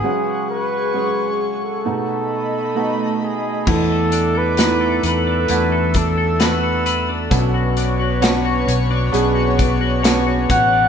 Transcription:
<<
  \new Staff \with { instrumentName = "Analog synth pad" } { \time 4/4 \key b \dorian \tempo 4 = 66 << { cis'''2 b''2 | \key e \mixolydian d'''2 e'''2 | cis'''1 | } \\ { <gis' fis''>2 <a dis''>2 | <a' e''>1 | <b' cis''>1 | } >> }
  \new Staff \with { instrumentName = "Flugelhorn" } { \time 4/4 \key b \dorian gis'8 b'4 r16 a'4.~ a'16 gis'8 | \key e \mixolydian a'8. b'8. b'4 a'8 b'8. r16 | r2. r8 fis''8 | }
  \new Staff \with { instrumentName = "Clean electric guitar" } { \time 4/4 \key b \dorian r1 | \key e \mixolydian e16 a'16 d'16 a'16 b'16 a'16 b'16 d'16 e16 a'16 d'16 a'16 b'16 a'16 b'16 d'16 | b,16 fis'16 d'16 fis'16 cis''16 fis'16 cis''16 d'16 b,16 fis'16 d'16 fis'16 cis''16 fis'16 cis''16 d'16 | }
  \new Staff \with { instrumentName = "Felt piano" } { \time 4/4 \key b \dorian <fis gis cis' fis'>4 <fis gis cis' gis'>4 <a b dis' fis'>4 <a b dis' fis'>4 | \key e \mixolydian <a b d' e'>4 <a b d' dis' e'>4 <a b d' fis'>4 <a b d' fis'>4 | <b cis' d' fis'>4 <b cis' d' fis'>4 <b cis' d' gis'>4 <b cis' d' fis'>4 | }
  \new Staff \with { instrumentName = "Felt piano" } { \clef bass \time 4/4 \key b \dorian cis4. r8 b,4. r8 | \key e \mixolydian e4. r2 r8 | b,4. r2 r8 | }
  \new Staff \with { instrumentName = "Fingered electric bass" } { \clef bass \time 4/4 \key b \dorian r1 | \key e \mixolydian e,4. e,8 e,2 | b,,4. b,,8 b,,4. a,,8 | }
  \new DrumStaff \with { instrumentName = "Drums" } \drummode { \time 4/4 r4 r4 r4 r4 | <cymc bd>8 hh8 <hh sn>8 hh8 hh8 <hh bd>8 <hh sn>8 hh8 | <hh bd>8 hh8 <hh sn>8 hh8 hh8 <hh bd>8 <hh sn>8 <hh bd>8 | }
>>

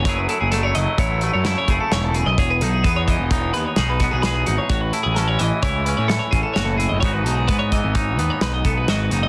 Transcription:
<<
  \new Staff \with { instrumentName = "Clean electric guitar" } { \time 5/4 \key e \major \tempo 4 = 129 cis''16 b'16 a'16 gis'16 a'16 cis''16 dis''8 cis''8 b'16 cis''16 a'16 cis''16 gis'16 a'16 cis''16 a'16 gis'16 dis''16 | cis''16 b'16 a'16 gis'16 b'16 cis''16 dis''8 cis''8 b'16 cis''16 gis'16 b'16 fis'16 gis'16 b'16 gis'16 fis'16 cis''16 | cis''16 b'16 a'16 gis'16 a'16 cis''16 dis''8 cis''8 b'16 cis''16 a'16 cis''16 gis'16 a'16 cis''16 a'16 gis'16 dis''16 | cis''16 b'16 a'16 gis'16 b'16 cis''16 dis''8 cis''8 b'16 cis''16 b'16 dis''16 a'16 b'16 dis''16 b'16 gis'16 dis''16 | }
  \new Staff \with { instrumentName = "Clean electric guitar" } { \time 5/4 \key e \major << { <fis a e' gis'>8 e'8 a4 e'8 a8 e'8 a4. | gis'8 dis'8 b4 dis'8 b8 dis'8 b8 gis'8 dis'8 | fis'8 e'8 cis'4 e'8 cis'8 e'8 cis'8 fis'8 e'8 | <e b dis' fis'>8 dis'8 b4 dis'8 b8 dis'8 b8 fis'8 dis'8 | } \\ { fis,4. fis4. cis4 gis,8 fis,8 | r4. e4. b,4 e,4 | a,4. e4. e4 a,4 | gis,4. e2~ e8 gis,4 | } >> }
  \new Staff \with { instrumentName = "Picked electric bass" } { \clef bass \time 5/4 \key e \major fis,,8 r16 fis,,8. fis,,16 r16 a,,8. fis,8 r16 fis,,16 r16 e,,8. b,,16 | e,,8 b,,8 e,8. e,,8. dis,16 r16 b,,8. b,,8. gis,,16 r16 | a,,8 r16 a,,8. a,,16 r16 cis,8. a,8 r16 a,,16 r16 fis,,8. fis,,16 | gis,,8 b,,8 gis,8. gis,,8. dis,16 r16 b,,8 b,,8 gis,,8 fis,,8 | }
  \new DrumStaff \with { instrumentName = "Drums" } \drummode { \time 5/4 <hh bd>8 hh8 <hh sn>8 hh8 <hh bd>8 hh8 <hh sn>8 <hh bd>8 <hh sn>8 hh8 | <hh bd>8 hh8 <hh bd>8 <hh bd>8 <hh bd>8 hh8 <hh sn>8 <hh bd sn>8 <hh sn>8 hh8 | <hh bd>8 hh8 <hh sn>8 hh8 <hh bd>8 hh8 <hh sn>8 <hh bd>8 <hh sn>8 hh8 | <hh bd>8 hh8 <hh bd>8 <hh bd>8 <hh bd>8 hh8 <hh sn>8 <hh bd>8 <hh sn>8 hh8 | }
>>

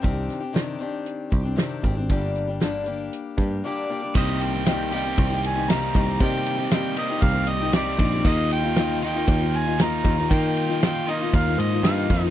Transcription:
<<
  \new Staff \with { instrumentName = "Harmonica" } { \time 4/4 \key c \minor \tempo 4 = 117 r1 | r2. d''4 | ees''8 g''4 g''4 aes''8 bes''4 | g''4 g''8 ees''8 f''8 ees''8 d''4 |
ees''8 g''4 g''4 aes''8 bes''4 | g''4 g''8 ees''8 f''8 ees''8 f''4 | }
  \new Staff \with { instrumentName = "Steel-string acoustic guitar" } { \time 4/4 \key c \minor <c ees c' d' g'>8. <c' d' g'>16 <c ees c' d' g'>8 <ees c' d' g'>4 <ees c' d' g'>16 <c' d' g'>16 <c ees c' d' g'>8 <ees c' d' g'>16 <c' d' g'>16 | <g, d g bes d' g'>8. <g bes d' g'>16 <g, d g bes d' g'>8 <g bes d' g'>4 <g bes d' g'>8 <g, d g bes d' g'>8 <g bes d' g'>16 <g bes d' g'>16 | <c g bes ees' g'>8. <bes ees' g'>16 <c g bes ees' g'>8 <g bes ees' g'>16 <bes ees' g'>8 <bes ees' g'>8 <bes ees' g'>16 <c g bes ees' g'>8 <g bes ees' g'>16 <bes ees' g'>16 | <c g bes ees' g'>8. <bes ees' g'>16 <c g bes ees' g'>8 <g bes ees' g'>16 <bes ees' g'>8 <bes ees' g'>8 <bes ees' g'>16 <c g bes ees' g'>8 <g bes ees' g'>16 <bes ees' g'>16 |
<ees bes ees' f'>8. <bes ees' f'>16 <ees bes ees' f'>8 <ees bes ees' f'>16 <bes ees' f'>8 <bes ees' f'>8 <bes ees' f'>16 <ees bes ees' f'>8 <ees bes ees' f'>16 <bes ees' f'>16 | <ees bes ees' f'>8. <bes ees' f'>16 <ees bes ees' f'>8 <ees bes ees' f'>16 <bes ees' f'>8 <bes ees' f'>8 <bes ees' f'>16 <ees bes ees' f'>8 <ees bes ees' f'>16 <bes ees' f'>16 | }
  \new Staff \with { instrumentName = "Overdriven electric guitar" } { \time 4/4 \key c \minor r1 | r1 | <c ees g c' g'>4. <c ees g c' g'>4. <c ees g c' g'>4 | <c ees g c' g'>4. <c ees g c' g'>4. <c ees g c' g'>4 |
<ees bes ees' f'>4. <ees bes ees' f'>4. <ees bes ees' f'>4 | <ees bes ees' f'>4. <ees bes ees' f'>4. <ees bes ees' f'>4 | }
  \new Staff \with { instrumentName = "Picked electric bass" } { \clef bass \time 4/4 \key c \minor c,8 r2 c,8 r8 aes,,8 | g,,2 r8 g,8 r4 | c,2 c,4. c,8 | c2 c,4. bes,,8 |
ees,2 ees,4. ees,8 | ees2 ees,8 aes,8 g,8 f,8 | }
  \new DrumStaff \with { instrumentName = "Drums" } \drummode { \time 4/4 <hh bd>8 <hh sn>8 <hh sn>8 hh8 hh8 <hh bd>8 <hh sn>8 <hh bd>8 | <hh bd>8 hh8 <hh sn>8 hh8 hh8 <hh bd>8 r4 | <cymc bd>8 cymr16 sn16 <cymr sn>8 cymr8 <bd cymr>8 cymr8 <cymr sn>8 <bd cymr>8 | <bd cymr>8 cymr16 sn16 <cymr sn>8 cymr8 <bd cymr>8 cymr8 <cymr sn>8 <bd cymr>8 |
<cymc bd>8 cymr8 <cymr sn>8 cymr8 <bd cymr>8 cymr8 <cymr sn>8 <bd cymr>16 sn16 | <bd cymr>8 cymr16 sn16 <cymr sn>8 cymr8 <bd cymr>8 cymr8 <cymr sn>8 <bd cymr>8 | }
>>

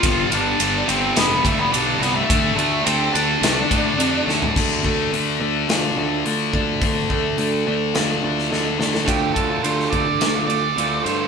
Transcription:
<<
  \new Staff \with { instrumentName = "Lead electric guitar" } { \time 4/4 \key d \minor \tempo 4 = 106 <f' f''>8 <d' d''>4 <c' c''>8 <b b'>8 <a a'>16 <b b'>16 <d' d''>8 <b b'>16 <a a'>16~ | <a a'>8 <a a'>8 <c' c''>8 <d' d''>2 r8 | r1 | r1 |
g'8 a'8 c''8 d''4 d''4 c''8 | }
  \new Staff \with { instrumentName = "Clean electric guitar" } { \time 4/4 \key d \minor r1 | r1 | d8 a8 d8 d'8 f'8 d'8 d8 d'8 | d8 a8 d8 d'8 f'8 d'8 d8 d'8 |
<d a d' f'>8 <d a d' f'>16 <a d' f'>16 <d a d' f'>8 <d a d' f'>8. <a d' f'>8. <d a d' f'>8 <d a d' f'>16 <a d' f'>16 | }
  \new Staff \with { instrumentName = "Distorted electric guitar" } { \clef bass \time 4/4 \key d \minor <g, d g>8 <g, d g>8 <g, d g>8 <g, d g>8 <g, d g>8 <g, d g>8 <g, d g>8 <g, d g>8 | <d a d'>8 <d a d'>8 <d a d'>8 <d a d'>8 <d a d'>8 <d a d'>8 <d a d'>8 <d a d'>8 | <d a d'>8 <d a d'>8 <d a d'>8 <d a d'>8 <d a d'>8 <d a d'>8 <d a d'>8 <d a d'>8 | <d a d'>8 <d a d'>8 <d a d'>8 <d a d'>8 <d a d'>8 <d a d'>8 <d a d'>8 <d a d'>8 |
r1 | }
  \new Staff \with { instrumentName = "Distorted electric guitar" } { \clef bass \time 4/4 \key d \minor <g, d g>8 <g, d g>8 <g, d g>8 <g, d g>8 <g, d g>8 <g, d g>8 <g, d g>8 <g, d g>8 | <d a d'>8 <d a d'>8 <d a d'>8 <d a d'>8 <d a d'>8 <d a d'>8 <d a d'>8 <d a d'>8 | r1 | r1 |
<d a d'>8 <d a d'>8 <d a d'>8 <d a d'>8 <d a d'>8 <d a d'>8 <d a d'>8 <d a d'>8 | }
  \new Staff \with { instrumentName = "Picked electric bass" } { \clef bass \time 4/4 \key d \minor g,,8 g,,8 g,,8 g,,8 f,,8 d,8 b,,8 c,8 | d,8 d,8 d,8 d,8 c,8 a,8 f,8 d,8 | d,8 d,8 d,8 d,8 d,8 d,8 d,8 d,8 | d,8 d,8 d,8 d,8 d,8 d,8 d,8 d,8 |
d,8 d,8 d,8 d,8 d,8 d,8 d,8 g,8 | }
  \new DrumStaff \with { instrumentName = "Drums" } \drummode { \time 4/4 <bd cymr>8 cymr8 cymr8 cymr8 <cymr sn>8 <bd cymr>8 cymr8 <cymr sn>8 | <bd cymr>8 cymr8 cymr8 cymr8 <cymr sn>8 <bd cymr>8 cymr8 sn16 tomfh16 | <cymc bd>8 bd8 hho4 <hho sn>4 hho8 bd8 | <hho bd>8 bd8 hho4 <hho sn>8. sn16 sn8 sn16 sn16 |
<bd cymr>8 <bd cymr>8 cymr16 sn16 <bd cymr>8 <cymr sn>8 cymr8 cymr8 cymr8 | }
>>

